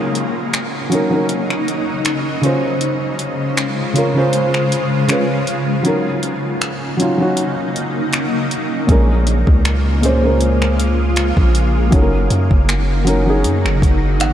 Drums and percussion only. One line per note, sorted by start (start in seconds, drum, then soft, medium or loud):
0.15 closed hi-hat medium
0.53 finger snap loud
0.53 closed hi-hat medium
0.92 closed hi-hat medium
1.29 closed hi-hat medium
1.50 finger snap medium
1.68 closed hi-hat medium
2.05 finger snap loud
2.05 closed hi-hat medium
2.43 closed hi-hat medium
2.81 closed hi-hat medium
3.19 closed hi-hat medium
3.57 finger snap loud
3.57 closed hi-hat medium
3.96 closed hi-hat medium
4.33 closed hi-hat medium
4.54 finger snap medium
4.72 closed hi-hat medium
5.09 finger snap loud
5.09 closed hi-hat medium
5.47 closed hi-hat medium
5.85 closed hi-hat medium
6.23 closed hi-hat medium
6.61 finger snap loud
6.61 closed hi-hat medium
7.00 closed hi-hat medium
7.37 closed hi-hat medium
7.76 closed hi-hat medium
8.13 finger snap loud
8.13 closed hi-hat medium
8.51 closed hi-hat medium
8.89 kick loud
8.89 closed hi-hat medium
9.27 closed hi-hat medium
9.47 kick medium
9.65 finger snap loud
9.65 closed hi-hat medium
10.03 closed hi-hat medium
10.41 closed hi-hat medium
10.62 finger snap medium
10.80 closed hi-hat medium
11.16 finger snap loud
11.16 closed hi-hat medium
11.37 kick medium
11.55 closed hi-hat medium
11.92 kick loud
11.92 closed hi-hat medium
12.30 closed hi-hat medium
12.51 kick medium
12.69 finger snap loud
12.69 closed hi-hat medium
13.07 closed hi-hat medium
13.44 closed hi-hat medium
13.66 finger snap medium
13.82 kick medium
13.82 closed hi-hat medium
14.20 finger snap loud
14.20 closed hi-hat medium